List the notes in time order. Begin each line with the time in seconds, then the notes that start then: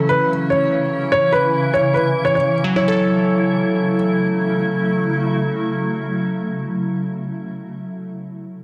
Already playing: C#3 E3 C#4 E4
0.09 B4
0.50 C#5
1.12 C#5
1.32 B4
1.74 C#5
1.94 B4
2.25 C#5
2.35 C#5
2.64 F#3
2.76 C#3 F#3 A3 E4 C#5
2.88 A4